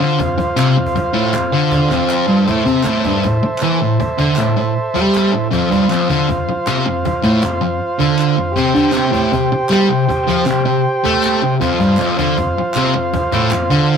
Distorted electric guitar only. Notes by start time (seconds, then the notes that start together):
0.00 D3
0.19 F2
0.38 muted distorted electric guitar stroke
0.56 C3
0.77 F2
0.96 muted distorted electric guitar stroke
1.13 A2
1.33 F2
1.53 D3
1.90 F2
2.27 G2
2.46 A2
2.65 C3
2.85 A2
3.05 G2
3.25 A2
3.43 muted distorted electric guitar stroke
3.62 E3
3.82 A2
4.00 muted distorted electric guitar stroke
4.18 D3
4.38 A2
4.57 A2
4.94 G3
5.31 A2
5.51 F2
5.71 G2
5.89 F2
6.09 D3
6.28 F2
6.48 muted distorted electric guitar stroke
6.67 C3
6.85 F2
7.05 muted distorted electric guitar stroke
7.23 A2
7.43 F2
7.61 F2
7.99 D3
8.37 F2
8.56 C3
8.74 D3
8.93 C3
9.12 A2
9.33 C3
9.52 muted distorted electric guitar stroke
9.70 G3
9.88 C3
10.09 muted distorted electric guitar stroke
10.27 F3
10.46 C3
10.65 C3
11.04 A3
11.42 C3
11.61 F2
11.80 G2
11.99 F2
12.17 D3
12.38 F2
12.58 muted distorted electric guitar stroke
12.76 C3
12.94 F2
13.13 muted distorted electric guitar stroke
13.32 A2
13.50 F2
13.70 D3